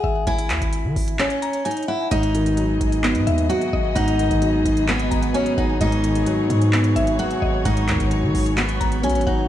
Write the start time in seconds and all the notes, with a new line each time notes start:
Already playing: G#4
0.04 G#1 E5
0.27 G#1 E4 G#5, closed hi-hat
0.39 closed hi-hat
0.50 D#2, clap, closed hi-hat
0.61 G#1, closed hi-hat
0.73 closed hi-hat
0.84 D#3
0.96 G#1, open hi-hat
1.08 closed hi-hat
1.19 C#4, clap, closed hi-hat
1.30 closed hi-hat
1.42 A#5, closed hi-hat
1.53 closed hi-hat
1.65 D#4 G#5, closed hi-hat
1.71 closed hi-hat
1.77 closed hi-hat
1.83 closed hi-hat
1.88 E4 F#5
2.11 G#1 G#2 B3 D#4 F#4 G#4 D#5, closed hi-hat
2.23 closed hi-hat
2.35 D#3, closed hi-hat
2.46 closed hi-hat
2.57 F#3, closed hi-hat
2.81 G#1, closed hi-hat
2.92 closed hi-hat
3.04 B3, clap, closed hi-hat
3.15 G#2, closed hi-hat
3.27 D#2 E5, closed hi-hat
3.38 closed hi-hat
3.49 F#3 F#4 F#5, closed hi-hat
3.61 closed hi-hat
3.73 G#1 D#5
3.95 G#1 G#2 D#4 F#5, closed hi-hat
4.08 closed hi-hat
4.19 D#3, closed hi-hat
4.31 G#1, closed hi-hat
4.42 F#3, closed hi-hat
4.65 G#1, closed hi-hat
4.77 closed hi-hat
4.88 B3, clap, closed hi-hat
4.99 closed hi-hat
5.11 G#1 A#5, closed hi-hat
5.23 closed hi-hat
5.34 F#3 C#4 G#5, closed hi-hat
5.46 closed hi-hat
5.58 G#1 D#4 F#5
5.80 G#1 G#2 D#4 C#5 D#5, closed hi-hat
5.92 closed hi-hat
6.03 D#3, closed hi-hat
6.15 closed hi-hat
6.26 F#3, closed hi-hat
6.50 G#2, closed hi-hat
6.62 closed hi-hat
6.73 B3, clap, closed hi-hat
6.84 closed hi-hat
6.96 G#1 E5, closed hi-hat
7.07 closed hi-hat
7.19 F#3 F#4 F#5, closed hi-hat
7.31 closed hi-hat
7.42 G#1 D#5
7.65 G#1 G#2 D#4 F#5, closed hi-hat
7.77 closed hi-hat
7.88 D#2 D#3, clap, closed hi-hat
8.00 G#1, closed hi-hat
8.11 F#3, closed hi-hat
8.23 D#3
8.35 G#1, open hi-hat
8.46 closed hi-hat
8.57 B3, clap, closed hi-hat
8.69 closed hi-hat
8.80 G#1 A#5, closed hi-hat
8.92 closed hi-hat
9.03 B1 F#3 C#4 G#5, closed hi-hat
9.10 closed hi-hat
9.15 G#1, closed hi-hat
9.21 closed hi-hat
9.27 G#1 D#4 F#5